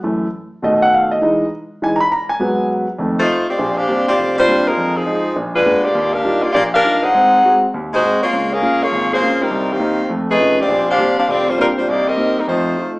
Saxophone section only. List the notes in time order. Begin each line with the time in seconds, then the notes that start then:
3.18 A3 D#4 F4 C5
3.48 C4 F4 G4 D5
3.77 D4 G4 C5 F5
4.08 C4 F4 G4 D5
4.37 G3 D4 F4 C5
4.66 G#3 D#4 F4 A#4
4.95 F3 C4 D#4 G#4
5.54 G#3 D4 F4 B4
5.83 A#3 F4 G4 D5
6.12 D4 G4 A#4 F5
6.41 A#3 F4 G4 D5
6.53 A#3 F4 G4 D5
6.72 D4 G4 A#4 F5
7.02 D#4 G#4 C5 F#5
7.93 G#3 D#4 F#4 C5
8.22 A#3 F4 G#4 C#5
8.52 C#4 G#4 A#4 F5
8.82 A#3 F4 G#4 C#5
9.12 A#3 F4 G#4 C5
9.42 G3 C4 D#4 A#4
9.71 D#3 A#3 C4 G4
10.29 A3 D#4 G#4 B4
10.60 C4 F4 G4 D5
10.90 D4 G4 C5 F5
11.17 D4 G4 C5 F5
11.28 C4 F4 G4 D5
11.48 G3 D4 F4 C5
11.59 G3 D4 F4 A#4
11.77 G3 D4 F4 C5
11.89 A#3 D#4 G4 D5
12.08 C4 G4 A#4 D#5
12.38 G3 C4 D#4 A#4
12.48 A3 D#4 F4 C5